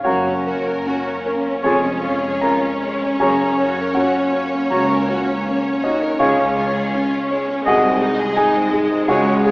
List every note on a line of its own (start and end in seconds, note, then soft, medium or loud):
0.03 0.72 F#1 soft
0.03 0.72 F#2 soft
0.03 1.61 F#2 soft
0.03 0.24 A#3 soft
0.03 1.61 A#3 soft
0.03 6.15 C#4 soft
0.03 1.61 C#4 soft
0.03 0.34 F#4 soft
0.03 1.61 F#4 soft
0.03 1.60 A#4 soft
0.03 0.34 C#5 soft
0.03 1.60 F#5 medium
0.03 0.43 A#5 soft
0.27 0.46 C#4 soft
0.47 0.67 F#4 soft
0.47 1.10 A#4 soft
0.66 0.86 A#4 soft
0.86 1.50 C#4 soft
0.86 1.06 F#4 soft
1.07 1.26 C#4 soft
1.26 1.46 A#3 soft
1.26 1.65 A#4 soft
1.47 1.65 C#4 soft
1.63 2.29 F1 soft
1.63 2.29 F2 soft
1.63 3.16 F2 soft
1.63 3.19 G#3 soft
1.63 1.82 G#3 soft
1.63 3.16 C#4 soft
1.63 1.93 F4 soft
1.63 2.39 G#4 soft
1.63 1.91 C#5 soft
1.63 7.66 C#5 soft
1.63 2.38 G#5 soft
1.63 2.00 G#5 soft
1.83 2.03 C#4 soft
2.02 2.22 F4 soft
2.02 2.66 C#5 soft
2.22 2.42 G#4 soft
2.41 3.05 C#4 soft
2.41 2.63 F4 soft
2.41 3.16 A#4 soft
2.41 3.16 A#5 medium
2.65 2.83 C#4 soft
2.83 3.02 G#3 soft
2.83 3.21 C#5 soft
3.03 3.21 C#4 soft
3.19 3.82 F#1 soft
3.19 3.83 F#2 soft
3.19 4.67 F#2 soft
3.19 3.93 A#3 soft
3.19 3.93 C#4 soft
3.19 3.47 F#4 soft
3.19 3.92 G#4 soft
3.19 3.47 C#5 soft
3.19 3.91 G#5 medium
3.19 3.55 A#5 soft
3.23 3.39 A#3 soft
3.43 3.59 C#4 soft
3.58 3.77 F#4 soft
3.58 4.18 C#5 soft
3.80 3.97 A#4 soft
3.93 6.16 A#3 soft
3.93 4.55 C#4 soft
3.93 6.16 C#4 soft
3.93 5.79 F#4 soft
3.93 5.78 F#5 medium
4.00 4.17 F#4 soft
4.17 4.34 C#4 soft
4.32 4.53 A#3 soft
4.32 4.93 C#5 soft
4.55 4.72 C#4 soft
4.70 5.33 C#2 soft
4.70 5.30 C#3 soft
4.70 4.89 F#4 soft
4.70 4.98 F#4 soft
4.70 4.97 C#5 soft
4.70 5.05 A#5 soft
4.90 5.08 A#4 soft
5.09 5.28 F#4 soft
5.09 5.68 C#5 soft
5.27 5.46 C#4 soft
5.45 5.64 A#3 soft
5.45 6.06 C#4 soft
5.63 5.82 C#4 soft
5.83 6.19 D#4 soft
5.83 6.02 F#4 soft
5.83 6.20 C#5 soft
5.83 6.18 D#5 medium
6.02 6.20 A#4 soft
6.19 6.82 C#2 medium
6.19 7.62 C#2 soft
6.19 6.82 C#2 medium
6.19 6.37 G#3 soft
6.19 7.63 G#3 soft
6.19 7.63 C#4 soft
6.19 7.62 F4 soft
6.19 6.47 G#4 soft
6.19 6.46 C#5 soft
6.19 7.62 F5 medium
6.19 6.54 G#5 soft
6.39 6.57 C#4 soft
6.57 6.76 F4 soft
6.57 7.16 C#5 soft
6.74 6.93 G#4 soft
6.94 7.52 C#4 soft
6.94 7.13 F4 soft
7.15 7.32 C#4 soft
7.30 7.48 G#3 soft
7.30 7.66 C#5 soft
7.48 7.66 C#4 soft
7.65 8.25 C2 medium
7.65 8.25 C2 soft
7.65 9.05 C2 medium
7.65 7.82 G#3 soft
7.65 9.51 G#3 soft
7.65 8.19 G#3 soft
7.65 8.19 D#4 soft
7.65 8.34 F#4 soft
7.65 7.91 G#4 medium
7.65 7.91 D#5 soft
7.65 9.06 D#5 soft
7.65 8.34 F#5 medium
7.65 7.99 G#5 soft
7.83 8.01 C4 soft
8.01 8.19 D#4 soft
8.01 8.37 G#4 soft
8.20 8.37 G#4 soft
8.36 9.07 G#3 medium
8.36 8.54 D#4 soft
8.36 9.07 D#4 soft
8.36 8.95 D#4 soft
8.36 8.72 G#4 medium
8.36 9.05 G#5 medium
8.55 8.73 C4 soft
8.71 8.90 G#3 soft
8.71 9.09 G#4 soft
8.91 9.09 C4 soft
9.07 9.51 C#2 medium
9.07 9.26 G#3 medium
9.07 9.51 G#3 soft
9.07 9.51 C#4 soft
9.07 9.51 F#4 medium
9.07 9.34 G#4 medium
9.07 9.51 C#5 soft
9.07 9.35 C#5 soft
9.07 9.51 F#5 medium
9.07 9.42 G#5 medium
9.26 9.45 C#4 soft
9.45 9.51 F4 soft
9.45 9.51 G#4 medium